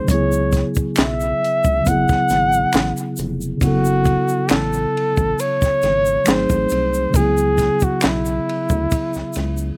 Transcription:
Already playing: G#4
0.04 C#3 F#3, kick, shaker
0.09 C#2 B3 E4 C#5, closed hi-hat
0.14 G#4
0.32 shaker
0.52 kick, snare, closed hi-hat, shaker
0.75 kick, shaker
0.96 B1 E5, finger snap, snare, clap, closed hi-hat, shaker
1.20 shaker
1.44 closed hi-hat
1.64 C#2, kick, shaker
1.81 C#3 F#3
1.86 F#1 B3 E4 F#5, kick, closed hi-hat, shaker
1.91 G#4
2.08 G#1, kick, snare, shaker
2.29 G#1, snare, closed hi-hat, shaker
2.52 shaker
2.73 A1, finger snap, snare, clap, closed hi-hat, shaker
2.97 shaker
3.17 F1, closed hi-hat, shaker
3.41 shaker
3.57 C#3 F#3, kick, shaker
3.62 F#1 B3 E4 F#4, ride
3.67 A4
3.85 shaker
4.05 kick, ride, shaker
4.28 shaker
4.49 A1 A4, finger snap, snare, clap, ride, shaker
4.73 shaker
4.97 ride
5.17 A1, kick, shaker
5.39 C#5, ride, shaker
5.62 G#1, kick, snare, shaker
5.82 G#1, snare, ride, shaker
6.06 shaker
6.24 G#1 F#3 A3 C4 D#4, finger snap, snare, clap, ride, shaker
6.29 G#4 C5
6.50 A1, kick, shaker
6.69 C2, ride, shaker
6.94 shaker
7.10 C#3 F#3
7.14 C#2 B3 E4 G#4, kick, ride, shaker
7.20 G#4
7.38 shaker
7.58 kick, snare, ride, shaker
7.80 F#4, kick, shaker
8.01 B1 E4, finger snap, snare, clap, ride, shaker
8.25 shaker
8.49 ride
8.69 D2, kick, shaker
8.91 kick, ride, shaker
9.14 C#2, snare, shaker
9.33 C#2, snare, ride, shaker
9.57 shaker

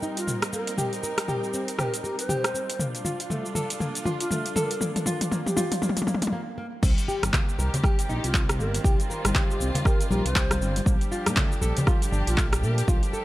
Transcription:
Already playing: G3 C4 D#4 A#4
0.02 D#4, cabasa
0.17 F4, closed hi-hat, cabasa
0.27 A#3, mid tom, cabasa
0.42 cross-stick, closed hi-hat, cabasa
0.53 A#3 A#4, cabasa
0.67 closed hi-hat, cabasa
0.78 G4, mid tom, cabasa
0.93 closed hi-hat, cabasa
1.03 A#4, cabasa
1.18 cross-stick, closed hi-hat, cabasa
1.28 G4, mid tom, cabasa
1.43 G4, cabasa
1.54 C4, cabasa
1.68 closed hi-hat, cabasa
1.78 G4 C5, cross-stick, mid tom, cabasa
1.83 A#4
1.94 closed hi-hat, cabasa
2.04 G4 A#4, cabasa
2.19 B4, closed hi-hat, cabasa
2.29 G4 C5, mid tom, cabasa
2.44 cross-stick, closed hi-hat, cabasa
2.54 C4, cabasa
2.70 closed hi-hat, cabasa
2.79 A#3 D4 F4, mid tom, cabasa
2.95 closed hi-hat, cabasa
3.05 F4, mid tom, cabasa
3.20 closed hi-hat, cabasa
3.30 A3, mid tom, cabasa
3.46 cabasa
3.55 A4, mid tom, cabasa
3.70 closed hi-hat, cabasa
3.80 A#3, mid tom, cabasa
3.95 closed hi-hat, cabasa
4.05 F4, mid tom, cabasa
4.20 F4, closed hi-hat, cabasa
4.31 A3, mid tom, cabasa
4.46 closed hi-hat, cabasa
4.56 A4 A#4, mid tom, cabasa
4.71 closed hi-hat, cabasa
4.81 A#3, mid tom, cabasa
4.96 closed hi-hat, mid tom, cabasa
5.06 F4, mid tom, cabasa
5.21 closed hi-hat, mid tom, cabasa
5.31 A#3, mid tom, cabasa
5.46 G4, mid tom, cabasa
5.57 F4, mid tom, cabasa
5.72 closed hi-hat, mid tom, cabasa
5.82 A#3, mid tom, cabasa
5.89 mid tom
5.97 closed hi-hat, mid tom, cabasa
6.02 mid tom
6.07 A#3, mid tom, cabasa
6.14 mid tom
6.22 closed hi-hat, mid tom, cabasa
6.27 mid tom
6.33 A#3
6.58 A#3
6.83 C2 D#3 G3 C4 G4, kick, crash, high conga, cabasa
6.98 closed hi-hat, cabasa
7.08 G4, cabasa
7.23 G1, cross-stick, closed hi-hat, high conga, cabasa
7.33 A#3, kick, clap, low conga, cabasa
7.49 cabasa
7.58 C2 A#4, cabasa
7.74 closed hi-hat, low conga, cabasa
7.83 G4, kick, cross-stick, high conga, cabasa
7.99 closed hi-hat, cabasa
8.09 A#1 D#4, cabasa
8.24 C2 F4, closed hi-hat, cabasa
8.34 A#3, kick, clap, cabasa
8.49 cross-stick, closed hi-hat, cabasa
8.59 G1 A#3 A#4, cabasa
8.74 closed hi-hat, cabasa
8.84 C2 F4 G4, kick, high conga, cabasa
9.00 closed hi-hat, cabasa
9.10 A#4, cabasa
9.25 G1, cross-stick, closed hi-hat, high conga, cabasa
9.35 G4, kick, clap, low conga, cabasa
9.50 G4, cabasa
9.60 C2 C4, cabasa
9.75 closed hi-hat, low conga, cabasa
9.85 G4 A#4, kick, cross-stick, cabasa
10.01 closed hi-hat, cabasa
10.11 A#1 G4 A#4, high conga, cabasa
10.25 C2 C5, closed hi-hat, cabasa
10.36 G4, kick, clap, cabasa
10.51 cross-stick, closed hi-hat, high conga, cabasa
10.61 G1 C4, cabasa
10.76 closed hi-hat, high conga, cabasa
10.86 A#1 F3 A#3 D4 G4, kick, high conga, cabasa
11.01 closed hi-hat, cabasa
11.12 F4, cabasa
11.26 A#2, cross-stick, closed hi-hat, high conga, cabasa
11.37 A3, kick, clap, low conga, cabasa
11.52 cabasa
11.62 A#1 A4, cabasa
11.77 closed hi-hat, low conga, cabasa
11.87 F4, kick, cross-stick, high conga, cabasa
12.02 closed hi-hat, cabasa
12.12 G1 D4, cabasa
12.27 A#1 F4, closed hi-hat, cabasa
12.37 A3, kick, clap, cabasa
12.53 cross-stick, closed hi-hat, cabasa
12.63 A#2 A3 A#4, cabasa
12.78 closed hi-hat, cabasa
12.88 A#1 F4, kick, high conga, cabasa
13.03 closed hi-hat, cabasa
13.13 A4, cabasa

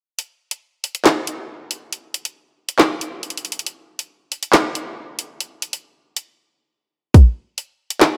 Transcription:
0.19 closed hi-hat
0.51 closed hi-hat
0.84 closed hi-hat
0.95 closed hi-hat
1.05 snare, clap, closed hi-hat
1.27 closed hi-hat
1.71 closed hi-hat
1.93 closed hi-hat
2.14 closed hi-hat
2.25 closed hi-hat
2.69 closed hi-hat
2.79 snare, clap
3.01 closed hi-hat
3.23 closed hi-hat
3.30 closed hi-hat
3.37 closed hi-hat
3.45 closed hi-hat
3.52 closed hi-hat
3.59 closed hi-hat
3.66 closed hi-hat
3.99 closed hi-hat
4.32 closed hi-hat
4.43 closed hi-hat
4.53 snare, clap, closed hi-hat
4.75 closed hi-hat
5.19 closed hi-hat
5.40 closed hi-hat
5.62 closed hi-hat
5.73 closed hi-hat
6.17 closed hi-hat
7.14 kick, closed hi-hat
7.58 closed hi-hat
7.90 closed hi-hat
8.01 snare, clap, closed hi-hat

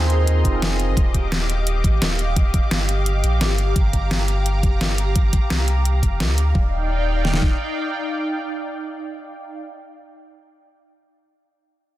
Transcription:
Already playing: D#2 C4 D#4 F4 G#4 A#4 C5 D#5 A#5 C6
0.10 closed hi-hat
0.27 closed hi-hat
0.43 F1 C4 D#4 F4 G#4 C5, kick, closed hi-hat
0.51 C4 D#4 F4 G#4
0.56 A#4
0.62 snare, closed hi-hat
0.80 closed hi-hat
0.88 G#1
0.97 D#1 G4 F5 D6, kick, closed hi-hat
1.14 kick, closed hi-hat
1.32 snare, closed hi-hat
1.50 closed hi-hat
1.67 closed hi-hat
1.84 A#1, kick, closed hi-hat
2.02 D#1, snare, closed hi-hat
2.19 closed hi-hat
2.36 kick, closed hi-hat
2.54 kick, closed hi-hat
2.71 G1, snare, closed hi-hat
2.89 closed hi-hat
3.06 closed hi-hat
3.24 A#1, closed hi-hat
3.41 G1, snare, closed hi-hat
3.58 A#5, closed hi-hat
3.76 G1, kick, closed hi-hat
3.93 kick, closed hi-hat
4.11 snare, closed hi-hat
4.28 closed hi-hat
4.46 closed hi-hat
4.63 F1, kick, closed hi-hat
4.81 G1, snare, closed hi-hat
4.98 closed hi-hat
5.16 kick, closed hi-hat
5.33 kick, closed hi-hat
5.50 C2, snare, closed hi-hat
5.68 closed hi-hat
5.85 closed hi-hat
6.03 F1, kick, closed hi-hat
6.20 D2, snare, closed hi-hat
6.38 closed hi-hat
6.55 D#1 D#4 D5 F5 G5, kick
7.25 snare
7.34 snare
7.42 kick

